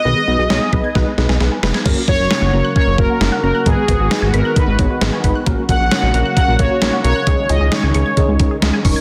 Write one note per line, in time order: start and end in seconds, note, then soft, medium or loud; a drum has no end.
0.00 1.36 D#5 loud
0.05 0.14 B1 loud
0.05 0.15 D#3 medium
0.05 0.21 B3 medium
0.05 0.20 D#4 medium
0.05 0.20 G#4 medium
0.05 0.20 B4 loud
0.16 0.26 G#3 medium
0.27 0.37 B1 loud
0.27 0.37 B3 medium
0.27 0.43 B3 medium
0.27 0.43 D#4 medium
0.27 0.43 G#4 medium
0.27 0.43 B4 medium
0.39 0.48 B1 loud
0.39 0.48 G#4 medium
0.50 0.59 B1 loud
0.50 0.66 B3 medium
0.50 0.66 D#4 medium
0.50 0.66 G#4 medium
0.50 0.66 C#5 medium
0.50 0.60 D#5 medium
0.50 snare loud
0.61 0.71 G#5 medium
0.73 0.82 B1 loud
0.73 0.88 B3 medium
0.73 0.88 D#4 medium
0.73 0.88 G#4 medium
0.73 0.88 B4 medium
0.73 0.82 B5 medium
0.73 kick medium
0.84 0.94 G#6 medium
0.95 1.05 B1 loud
0.95 1.05 D#3 medium
0.95 1.11 B3 loud
0.95 1.11 D#4 loud
0.95 1.11 G#4 loud
0.95 1.11 B4 loud
0.95 kick medium
0.95 snare medium
1.07 1.16 G#3 medium
1.18 1.27 B1 loud
1.18 1.33 B3 medium
1.18 1.28 B3 medium
1.18 1.33 D#4 medium
1.18 1.33 G#4 medium
1.18 1.33 B4 medium
1.18 snare medium
1.29 1.38 B1 loud
1.29 1.39 G#4 medium
1.29 snare medium
1.40 1.50 B1 loud
1.40 1.56 B3 medium
1.40 1.56 D#4 medium
1.40 1.56 G#4 medium
1.40 1.56 B4 medium
1.40 snare medium
1.52 1.61 G#5 medium
1.63 1.72 F1 loud
1.63 1.78 B3 medium
1.63 1.78 D#4 medium
1.63 1.78 G#4 medium
1.63 1.78 B4 medium
1.63 1.73 B5 medium
1.63 snare medium
1.74 1.84 G#6 medium
1.74 snare medium
1.85 1.95 F#1 loud
1.85 1.95 C#3 medium
1.85 3.64 C#3 medium
1.85 3.64 F#3 medium
1.85 2.01 A#3 loud
1.85 3.64 A#3 medium
1.85 2.01 C#4 loud
1.85 2.01 F#4 loud
1.85 5.43 F#4 medium
1.85 2.01 A#4 loud
1.85 kick loud
1.85 crash medium
1.97 2.06 F#3 medium
2.08 2.17 F#1 loud
2.08 2.24 A#3 medium
2.08 2.18 A#3 medium
2.08 2.24 C#4 medium
2.08 2.24 F#4 medium
2.08 2.24 A#4 medium
2.08 2.72 C#5 loud
2.08 kick medium
2.19 2.29 F#1 medium
2.19 2.29 F#4 medium
2.31 2.46 A#3 medium
2.31 2.46 C#4 medium
2.31 2.46 F#4 medium
2.31 2.46 A#4 medium
2.31 2.40 C#5 medium
2.31 snare loud
2.42 2.51 F#1 medium
2.42 2.52 F#5 medium
2.53 2.63 F#1 loud
2.53 2.69 A#3 medium
2.53 2.69 C#4 medium
2.53 2.69 F#4 medium
2.53 2.69 A#4 medium
2.53 2.63 A#5 medium
2.65 2.74 F#6 medium
2.75 2.85 C#3 medium
2.75 2.91 A#3 medium
2.75 2.91 C#4 medium
2.75 2.91 F#4 medium
2.75 2.91 A#4 loud
2.75 2.97 C#5 loud
2.75 kick medium
2.87 2.96 F#1 medium
2.87 2.97 F#3 medium
2.98 3.08 F#1 loud
2.98 3.08 A#3 medium
2.98 3.14 A#3 medium
2.98 3.14 C#4 medium
2.98 3.14 F#4 medium
2.98 3.43 A#4 loud
2.98 3.14 A#4 medium
2.98 kick medium
3.10 3.19 F#4 medium
3.21 3.30 F#1 loud
3.21 3.36 A#3 medium
3.21 3.36 C#4 medium
3.21 3.36 F#4 medium
3.21 3.36 A#4 medium
3.21 snare loud
3.32 3.42 F#5 medium
3.43 3.53 F#1 medium
3.43 3.59 A#3 medium
3.43 3.59 C#4 medium
3.43 3.59 F#4 medium
3.43 3.59 A#4 medium
3.43 3.67 A#4 medium
3.43 3.53 A#5 loud
3.55 3.64 F#6 medium
3.66 3.75 G#1 loud
3.66 3.76 D#3 medium
3.66 5.45 D#3 medium
3.66 5.45 G#3 medium
3.66 3.81 B3 medium
3.66 5.45 B3 medium
3.66 3.81 D#4 medium
3.66 3.81 G#4 medium
3.66 4.36 G#4 loud
3.66 3.81 B4 loud
3.66 kick loud
3.66 closed hi-hat medium
3.77 3.87 G#3 medium
3.88 3.98 G#1 loud
3.88 4.04 B3 medium
3.88 3.98 B3 medium
3.88 4.04 D#4 medium
3.88 4.04 G#4 medium
3.88 4.04 B4 medium
3.88 kick medium
3.88 closed hi-hat medium
4.00 4.09 G#1 medium
4.00 4.10 F#4 medium
4.11 4.27 B3 medium
4.11 4.26 D#4 medium
4.11 4.26 G#4 medium
4.11 4.27 B4 medium
4.11 4.21 D#5 medium
4.11 snare loud
4.11 closed hi-hat medium
4.22 4.32 G#1 loud
4.22 4.32 G#5 medium
4.34 4.43 G#1 loud
4.34 4.49 B3 medium
4.34 4.49 D#4 medium
4.34 4.49 G#4 medium
4.34 4.57 A#4 medium
4.34 4.49 B4 medium
4.34 4.43 B5 medium
4.34 closed hi-hat medium
4.45 4.55 F#6 medium
4.56 4.66 D#3 medium
4.56 4.72 B3 medium
4.56 4.72 D#4 medium
4.56 4.72 G#4 medium
4.56 4.72 B4 loud
4.56 4.98 B4 medium
4.56 kick medium
4.56 closed hi-hat medium
4.67 4.77 G#1 medium
4.67 4.77 G#3 medium
4.79 4.88 G#1 loud
4.79 4.94 B3 medium
4.79 4.89 B3 medium
4.79 4.94 D#4 medium
4.79 4.94 G#4 medium
4.79 4.94 C#5 medium
4.79 kick medium
4.79 closed hi-hat medium
4.90 5.00 F#4 medium
5.01 5.11 G#1 loud
5.01 5.17 B3 medium
5.01 5.17 D#4 medium
5.01 5.17 G#4 medium
5.01 5.17 B4 medium
5.01 snare loud
5.01 closed hi-hat medium
5.13 5.22 G#5 medium
5.24 5.33 G#1 medium
5.24 5.39 B3 medium
5.24 5.39 D#4 medium
5.24 5.39 G#4 medium
5.24 5.39 B4 loud
5.24 5.34 B5 loud
5.24 kick medium
5.24 closed hi-hat medium
5.35 5.45 F#6 medium
5.46 5.56 A#1 loud
5.46 9.01 C#3 medium
5.46 5.56 C#3 medium
5.46 7.25 F#3 medium
5.46 5.62 A#3 loud
5.46 7.25 A#3 medium
5.46 5.62 C#4 loud
5.46 5.62 F#4 loud
5.46 7.25 F#4 medium
5.46 5.62 A#4 loud
5.46 kick loud
5.46 closed hi-hat medium
5.58 5.67 F#3 medium
5.69 5.78 A#1 loud
5.69 5.84 A#3 medium
5.69 5.79 A#3 medium
5.69 5.84 C#4 medium
5.69 5.84 F#4 medium
5.69 5.84 A#4 medium
5.69 6.35 F#5 loud
5.69 kick medium
5.69 closed hi-hat medium
5.80 5.89 A#1 medium
5.80 5.90 F#4 medium
5.91 6.07 A#3 medium
5.91 6.07 C#4 medium
5.91 6.07 F#4 medium
5.91 6.07 C#5 medium
5.91 6.01 C#5 medium
5.91 snare loud
5.91 closed hi-hat medium
6.03 6.12 A#1 loud
6.03 6.13 F#5 medium
6.14 6.23 A#1 loud
6.14 6.30 A#3 medium
6.14 6.30 C#4 medium
6.14 6.30 F#4 medium
6.14 6.30 A#4 medium
6.14 6.24 A#5 medium
6.14 closed hi-hat medium
6.25 6.35 F#6 medium
6.36 6.46 C#3 medium
6.36 6.52 A#3 medium
6.36 6.52 C#4 medium
6.36 6.52 F#4 medium
6.36 6.52 A#4 loud
6.36 6.60 F#5 loud
6.36 kick medium
6.36 closed hi-hat medium
6.48 6.57 A#1 medium
6.48 6.58 F#3 medium
6.59 6.68 A#1 medium
6.59 6.75 A#3 medium
6.59 6.69 A#3 medium
6.59 6.75 C#4 medium
6.59 6.75 F#4 medium
6.59 6.75 A#4 medium
6.59 7.03 C#5 loud
6.59 kick medium
6.59 closed hi-hat medium
6.71 6.80 F#4 medium
6.82 6.91 A#1 loud
6.82 6.97 A#3 medium
6.82 6.97 C#4 medium
6.82 6.97 F#4 medium
6.82 6.97 A#4 medium
6.82 snare loud
6.82 closed hi-hat medium
6.93 7.03 F#5 medium
7.04 7.14 B1 medium
7.04 7.20 A#3 medium
7.04 7.20 C#4 medium
7.04 7.20 F#4 medium
7.04 7.20 A#4 medium
7.04 7.51 C#5 medium
7.04 7.14 A#5 medium
7.04 closed hi-hat medium
7.16 7.25 F#6 medium
7.27 7.36 C#2 loud
7.27 7.37 D#3 loud
7.27 9.01 D#3 medium
7.27 9.01 G#3 medium
7.27 7.42 G#3 loud
7.27 7.42 C#4 medium
7.27 7.42 D#4 medium
7.27 9.01 D#4 medium
7.27 7.42 G#4 loud
7.27 kick loud
7.27 closed hi-hat medium
7.38 7.48 G#3 medium
7.49 7.59 C#2 loud
7.49 7.65 G#3 medium
7.49 7.65 C#4 medium
7.49 7.59 C#4 medium
7.49 7.65 D#4 medium
7.49 7.65 G#4 medium
7.49 7.72 D#5 medium
7.49 closed hi-hat medium
7.61 7.70 C#2 medium
7.61 7.70 G#4 medium
7.72 7.88 G#3 medium
7.72 7.87 C#4 medium
7.72 7.88 D#4 medium
7.72 7.87 G#4 medium
7.72 8.58 C#5 medium
7.72 7.82 D#5 medium
7.72 snare loud
7.72 closed hi-hat medium
7.83 7.93 C#2 medium
7.83 7.93 G#5 medium
7.94 8.04 C#2 loud
7.94 8.10 G#3 medium
7.94 8.10 C#4 medium
7.94 8.10 D#4 medium
7.94 8.10 G#4 medium
7.94 8.04 C#6 medium
7.94 closed hi-hat medium
8.06 8.16 G#6 medium
8.17 8.27 D#3 medium
8.17 8.33 G#3 medium
8.17 8.33 C#4 medium
8.17 8.33 D#4 medium
8.17 8.33 G#4 loud
8.17 kick loud
8.17 closed hi-hat medium
8.28 8.38 C#2 medium
8.28 8.38 G#3 medium
8.40 8.49 C#2 loud
8.40 8.55 G#3 medium
8.40 8.55 C#4 medium
8.40 8.49 C#4 medium
8.40 8.55 D#4 medium
8.40 8.55 G#4 medium
8.40 kick medium
8.40 closed hi-hat medium
8.51 8.61 G#4 medium
8.62 8.72 C#2 loud
8.62 8.78 G#3 medium
8.62 8.78 C#4 medium
8.62 8.78 D#4 medium
8.62 8.78 G#4 medium
8.62 snare loud
8.62 closed hi-hat medium
8.74 8.83 G#5 medium
8.85 8.94 F1 medium
8.85 9.00 G#3 medium
8.85 9.00 C#4 medium
8.85 9.00 D#4 medium
8.85 9.00 A#4 loud
8.85 8.95 C#6 loud
8.85 kick medium
8.85 open hi-hat medium
8.96 9.01 G#6 medium